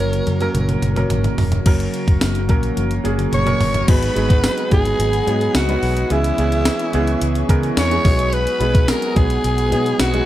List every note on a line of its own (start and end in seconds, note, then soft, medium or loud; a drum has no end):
0.00 0.19 F#1 loud
0.00 1.62 C#3 medium
0.00 0.40 F#3 medium
0.00 1.62 F#3 medium
0.00 0.41 A#3 medium
0.00 1.62 A#3 medium
0.00 0.41 C#4 medium
0.00 1.62 F#4 medium
0.00 0.42 A#4 medium
0.00 1.11 A#4 loud
0.00 0.37 C#5 loud
0.13 closed hi-hat medium
0.27 0.47 F#2 medium
0.27 closed hi-hat medium
0.27 mid tom medium
0.40 0.92 F#3 medium
0.40 0.92 A#3 medium
0.40 0.92 C#4 medium
0.40 0.92 A#4 loud
0.40 closed hi-hat soft
0.55 0.75 F#1 loud
0.55 closed hi-hat medium
0.55 mid tom medium
0.69 closed hi-hat medium
0.69 mid tom medium
0.82 1.03 F#1 loud
0.82 closed hi-hat medium
0.82 mid tom medium
0.96 1.60 F#3 medium
0.96 1.60 A#3 medium
0.96 1.60 C#4 medium
0.96 1.60 A#4 loud
0.96 closed hi-hat soft
0.96 mid tom medium
1.10 1.31 G#1 medium
1.10 closed hi-hat medium
1.10 floor tom loud
1.24 closed hi-hat medium
1.24 floor tom medium
1.38 1.58 E1 medium
1.38 floor tom loud
1.38 open hi-hat medium
1.52 closed hi-hat medium
1.52 floor tom medium
1.66 1.86 F#1 loud
1.66 3.86 C#3 medium
1.66 2.42 F#3 medium
1.66 3.86 F#3 medium
1.66 2.42 A#3 medium
1.66 3.86 A#3 medium
1.66 2.42 C#4 medium
1.66 3.86 F#4 medium
1.66 2.43 A#4 loud
1.66 kick loud
1.66 closed hi-hat medium
1.66 crash loud
1.80 closed hi-hat medium
1.94 closed hi-hat medium
2.08 2.18 F#1 medium
2.08 kick medium
2.08 closed hi-hat medium
2.21 2.50 F#1 loud
2.21 snare loud
2.21 closed hi-hat medium
2.21 tambourine medium
2.35 closed hi-hat medium
2.48 2.70 A#1 medium
2.48 3.00 F#3 medium
2.48 3.00 A#3 medium
2.48 3.00 C#4 medium
2.48 3.00 A#4 loud
2.48 kick medium
2.48 closed hi-hat medium
2.63 closed hi-hat medium
2.77 2.97 F#1 loud
2.77 closed hi-hat medium
2.77 high tom medium
2.91 closed hi-hat medium
3.04 3.25 F#1 medium
3.04 3.42 F#3 medium
3.04 3.43 A#3 medium
3.04 3.43 C#4 medium
3.04 3.43 G#4 medium
3.04 closed hi-hat medium
3.04 mid tom medium
3.19 closed hi-hat medium
3.19 mid tom medium
3.32 3.53 F#1 loud
3.32 3.91 C#5 loud
3.32 3.84 C#6 loud
3.32 closed hi-hat medium
3.32 mid tom medium
3.45 3.84 F#3 medium
3.45 3.84 A#3 medium
3.45 3.84 C#4 medium
3.45 3.85 A#4 loud
3.45 closed hi-hat medium
3.45 mid tom medium
3.61 3.81 F#1 medium
3.61 floor tom loud
3.61 open hi-hat medium
3.74 closed hi-hat medium
3.74 floor tom medium
3.87 4.08 G#1 loud
3.87 4.13 F#3 medium
3.87 4.13 G#3 medium
3.87 4.13 B3 medium
3.87 6.07 B3 medium
3.87 4.14 D#4 medium
3.87 6.07 D#4 medium
3.87 6.07 F#4 medium
3.87 6.08 G#4 medium
3.87 4.14 G#4 medium
3.87 4.72 B4 loud
3.87 6.08 D#5 medium
3.87 6.08 F#5 medium
3.87 6.08 B5 medium
3.87 4.72 B5 loud
3.87 kick loud
3.87 closed hi-hat medium
3.87 crash loud
4.03 closed hi-hat medium
4.15 4.46 G#1 loud
4.15 4.66 F#3 medium
4.15 4.66 G#3 medium
4.15 4.67 B3 medium
4.15 4.67 D#4 medium
4.15 4.67 G#4 medium
4.15 closed hi-hat medium
4.30 kick medium
4.30 closed hi-hat medium
4.44 snare loud
4.44 closed hi-hat medium
4.44 tambourine medium
4.58 closed hi-hat medium
4.70 4.92 G#1 medium
4.70 5.22 F#3 medium
4.70 5.22 G#3 medium
4.70 5.22 B3 medium
4.70 5.22 D#4 medium
4.70 5.22 G#4 medium
4.70 5.52 G#4 loud
4.70 5.51 G#5 loud
4.70 kick medium
4.70 closed hi-hat medium
4.85 closed hi-hat medium
4.99 5.19 G#1 loud
4.99 closed hi-hat medium
5.13 closed hi-hat medium
5.26 5.47 G#2 loud
5.26 5.65 F#3 medium
5.26 5.65 G#3 medium
5.26 5.65 B3 medium
5.26 5.65 D#4 medium
5.26 5.65 G#4 medium
5.26 closed hi-hat medium
5.41 closed hi-hat medium
5.55 5.75 C#2 medium
5.55 6.14 F#4 medium
5.55 6.07 F#5 medium
5.55 snare loud
5.55 closed hi-hat medium
5.55 tambourine medium
5.68 6.06 F#3 medium
5.68 6.07 G#3 medium
5.68 6.07 B3 medium
5.68 6.07 D#4 medium
5.68 6.07 B4 medium
5.68 closed hi-hat medium
5.83 6.03 B1 loud
5.83 open hi-hat medium
5.97 closed hi-hat medium
6.10 6.30 C#2 loud
6.10 6.35 E3 medium
6.10 6.36 G#3 medium
6.10 6.36 B3 medium
6.10 10.26 B3 medium
6.10 6.36 C#4 medium
6.10 8.01 C#4 medium
6.10 8.01 E4 medium
6.10 7.51 E4 medium
6.10 8.01 G#4 medium
6.10 6.36 G#4 medium
6.10 8.03 E5 medium
6.10 7.51 E5 medium
6.10 10.26 G#5 medium
6.10 8.03 C#6 medium
6.10 closed hi-hat medium
6.24 closed hi-hat medium
6.38 6.68 C#2 loud
6.38 6.89 E3 medium
6.38 6.89 G#3 medium
6.38 6.89 B3 medium
6.38 6.89 C#4 medium
6.38 6.89 G#4 medium
6.38 closed hi-hat medium
6.52 closed hi-hat medium
6.65 snare loud
6.65 closed hi-hat medium
6.65 tambourine medium
6.79 closed hi-hat medium
6.93 7.14 C#2 medium
6.93 7.44 E3 loud
6.93 7.44 G#3 medium
6.93 7.45 B3 medium
6.93 7.45 C#4 medium
6.93 7.45 G#4 loud
6.93 closed hi-hat medium
7.07 closed hi-hat soft
7.21 7.42 C#2 loud
7.21 closed hi-hat medium
7.35 closed hi-hat medium
7.49 7.69 C#3 loud
7.49 7.87 E3 medium
7.49 7.87 G#3 medium
7.49 7.87 B3 medium
7.49 7.88 C#4 medium
7.49 7.88 A#4 loud
7.49 kick medium
7.49 closed hi-hat medium
7.63 closed hi-hat medium
7.77 7.97 E2 medium
7.77 8.35 C#5 loud
7.77 8.29 C#6 medium
7.77 snare loud
7.77 closed hi-hat medium
7.77 tambourine medium
7.90 8.04 E3 medium
7.90 8.03 G#3 medium
7.90 8.03 B3 medium
7.90 8.05 C#4 medium
7.90 8.04 G#4 medium
7.90 closed hi-hat medium
8.04 8.45 B1 loud
8.04 8.55 F#3 medium
8.04 8.55 G#3 medium
8.04 8.56 B3 medium
8.04 8.56 D#4 medium
8.04 10.23 F#4 medium
8.04 10.23 G#4 medium
8.04 8.56 G#4 medium
8.04 10.23 B4 medium
8.04 10.25 F#5 medium
8.04 10.25 D#6 medium
8.04 kick loud
8.04 open hi-hat medium
8.19 closed hi-hat medium
8.33 8.90 B4 loud
8.33 8.88 B5 loud
8.33 closed hi-hat medium
8.47 closed hi-hat medium
8.60 8.90 B1 loud
8.60 9.11 F#3 medium
8.60 9.11 G#3 medium
8.60 9.11 B3 medium
8.60 9.11 D#4 medium
8.60 9.12 G#4 medium
8.60 closed hi-hat medium
8.75 kick loud
8.75 closed hi-hat medium
8.88 9.18 A#4 loud
8.88 9.16 A#5 medium
8.88 snare loud
8.88 closed hi-hat medium
8.88 tambourine medium
9.02 closed hi-hat medium
9.15 9.36 B1 medium
9.15 9.66 F#3 medium
9.15 9.67 G#3 medium
9.15 9.67 B3 medium
9.15 9.67 D#4 medium
9.15 9.67 G#4 medium
9.15 10.01 G#4 loud
9.15 10.00 G#5 medium
9.15 kick medium
9.15 closed hi-hat medium
9.30 closed hi-hat medium
9.44 9.73 B1 loud
9.44 closed hi-hat medium
9.58 closed hi-hat medium
9.71 9.92 B2 medium
9.71 10.09 F#3 medium
9.71 10.09 G#3 medium
9.71 10.10 B3 medium
9.71 10.10 D#4 medium
9.71 10.10 G#4 medium
9.71 closed hi-hat medium
9.86 closed hi-hat medium
9.99 10.20 B1 medium
9.99 10.26 F#4 medium
9.99 10.26 F#5 medium
9.99 snare loud
9.99 closed hi-hat medium
9.99 tambourine medium
10.13 10.26 F#3 medium
10.13 10.26 G#3 medium
10.13 10.26 B3 medium
10.13 10.26 D#4 medium
10.13 10.26 G#4 medium
10.13 closed hi-hat medium